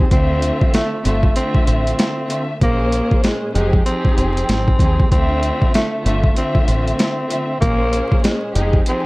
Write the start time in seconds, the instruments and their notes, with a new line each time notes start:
0.10 fingered electric bass D2, string section D3 A3 C4 F4 E5, tenor saxophone C4, kick, closed hi-hat
0.42 closed hi-hat
0.61 kick
0.74 tenor saxophone A3, snare, closed hi-hat
1.03 fingered electric bass G1, string section D3 A3 C4 F4 E5, tenor saxophone A3, closed hi-hat
1.23 kick
1.34 string section D3 A3 C4 F4 E5, tenor saxophone C4, closed hi-hat
1.55 kick
1.66 fingered electric bass A1, tenor saxophone C4, closed hi-hat
1.87 closed hi-hat
1.99 snare, closed hi-hat
2.28 string section D3 A3 C4 F4 E5, closed hi-hat
2.58 fingered electric bass A#1, string section A#2 A#3 C#4 G#4 C5, kick, closed hi-hat
2.63 tenor saxophone A#3
2.92 closed hi-hat
3.11 kick
3.23 tenor saxophone G#3, snare, closed hi-hat
3.54 fingered electric bass F1, string section F3 C4 D#4 G4 G#4, tenor saxophone G#3, closed hi-hat
3.73 kick
3.85 string section F3 C4 D#4 G4 G#4, tenor saxophone C4, closed hi-hat
4.05 kick
4.17 fingered electric bass F1, tenor saxophone C4, closed hi-hat
4.37 closed hi-hat
4.49 fingered electric bass G#1, snare, closed hi-hat
4.68 kick
4.79 fingered electric bass D#2, string section F3 C4 D#4 G4 G#4, kick, closed hi-hat
5.00 kick
5.09 fingered electric bass D2, string section D3 A3 C4 F4 E5, tenor saxophone C4, kick, closed hi-hat
5.43 closed hi-hat
5.62 kick
5.74 tenor saxophone A3, snare, closed hi-hat
6.03 fingered electric bass G1, string section D3 A3 C4 F4 E5, tenor saxophone A3, closed hi-hat
6.24 kick
6.34 string section D3 A3 C4 F4 E5, tenor saxophone C4, closed hi-hat
6.55 kick
6.68 fingered electric bass A1, tenor saxophone C4, closed hi-hat
6.88 closed hi-hat
6.99 snare, closed hi-hat
7.28 string section D3 A3 C4 F4 E5, closed hi-hat
7.58 fingered electric bass A#1, string section A#2 A#3 C#4 G#4 C5, tenor saxophone A#3, kick, closed hi-hat
7.93 closed hi-hat
8.12 kick
8.23 tenor saxophone G#3, snare, closed hi-hat
8.54 fingered electric bass F1, string section F3 C4 D#4 G4 G#4, tenor saxophone G#3, closed hi-hat
8.73 kick
8.86 string section F3 C4 D#4 G4 G#4, tenor saxophone C4, closed hi-hat